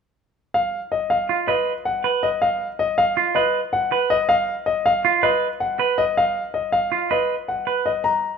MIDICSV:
0, 0, Header, 1, 3, 480
1, 0, Start_track
1, 0, Tempo, 375000
1, 692, Time_signature, 5, 2, 24, 8
1, 10724, End_track
2, 0, Start_track
2, 0, Title_t, "Grand piano"
2, 0, Program_c, 0, 0
2, 695, Note_on_c, 0, 77, 61
2, 1005, Note_off_c, 0, 77, 0
2, 1173, Note_on_c, 0, 75, 53
2, 1409, Note_on_c, 0, 77, 56
2, 1484, Note_off_c, 0, 75, 0
2, 1723, Note_off_c, 0, 77, 0
2, 1888, Note_on_c, 0, 75, 53
2, 2203, Note_off_c, 0, 75, 0
2, 2373, Note_on_c, 0, 78, 56
2, 2685, Note_off_c, 0, 78, 0
2, 2854, Note_on_c, 0, 75, 62
2, 3093, Note_on_c, 0, 77, 63
2, 3165, Note_off_c, 0, 75, 0
2, 3404, Note_off_c, 0, 77, 0
2, 3574, Note_on_c, 0, 75, 61
2, 3812, Note_on_c, 0, 77, 69
2, 3885, Note_off_c, 0, 75, 0
2, 4124, Note_off_c, 0, 77, 0
2, 4287, Note_on_c, 0, 75, 57
2, 4602, Note_off_c, 0, 75, 0
2, 4772, Note_on_c, 0, 78, 60
2, 5084, Note_off_c, 0, 78, 0
2, 5250, Note_on_c, 0, 75, 75
2, 5487, Note_on_c, 0, 77, 70
2, 5564, Note_off_c, 0, 75, 0
2, 5802, Note_off_c, 0, 77, 0
2, 5967, Note_on_c, 0, 75, 65
2, 6216, Note_on_c, 0, 77, 71
2, 6282, Note_off_c, 0, 75, 0
2, 6525, Note_off_c, 0, 77, 0
2, 6693, Note_on_c, 0, 75, 60
2, 7004, Note_off_c, 0, 75, 0
2, 7173, Note_on_c, 0, 78, 55
2, 7485, Note_off_c, 0, 78, 0
2, 7654, Note_on_c, 0, 75, 69
2, 7903, Note_on_c, 0, 77, 65
2, 7965, Note_off_c, 0, 75, 0
2, 8208, Note_off_c, 0, 77, 0
2, 8371, Note_on_c, 0, 75, 50
2, 8607, Note_on_c, 0, 77, 60
2, 8684, Note_off_c, 0, 75, 0
2, 8922, Note_off_c, 0, 77, 0
2, 9099, Note_on_c, 0, 75, 57
2, 9407, Note_off_c, 0, 75, 0
2, 9580, Note_on_c, 0, 78, 48
2, 9887, Note_off_c, 0, 78, 0
2, 10056, Note_on_c, 0, 75, 58
2, 10292, Note_on_c, 0, 82, 63
2, 10366, Note_off_c, 0, 75, 0
2, 10604, Note_off_c, 0, 82, 0
2, 10724, End_track
3, 0, Start_track
3, 0, Title_t, "Clean electric guitar"
3, 0, Program_c, 1, 27
3, 1655, Note_on_c, 1, 65, 51
3, 1895, Note_on_c, 1, 71, 55
3, 1965, Note_off_c, 1, 65, 0
3, 2205, Note_off_c, 1, 71, 0
3, 2614, Note_on_c, 1, 71, 52
3, 2925, Note_off_c, 1, 71, 0
3, 4056, Note_on_c, 1, 65, 57
3, 4297, Note_on_c, 1, 71, 54
3, 4366, Note_off_c, 1, 65, 0
3, 4606, Note_off_c, 1, 71, 0
3, 5017, Note_on_c, 1, 71, 56
3, 5326, Note_off_c, 1, 71, 0
3, 6459, Note_on_c, 1, 65, 68
3, 6695, Note_on_c, 1, 71, 61
3, 6767, Note_off_c, 1, 65, 0
3, 7005, Note_off_c, 1, 71, 0
3, 7417, Note_on_c, 1, 71, 55
3, 7726, Note_off_c, 1, 71, 0
3, 8853, Note_on_c, 1, 65, 55
3, 9098, Note_on_c, 1, 71, 54
3, 9165, Note_off_c, 1, 65, 0
3, 9406, Note_off_c, 1, 71, 0
3, 9816, Note_on_c, 1, 71, 44
3, 10126, Note_off_c, 1, 71, 0
3, 10724, End_track
0, 0, End_of_file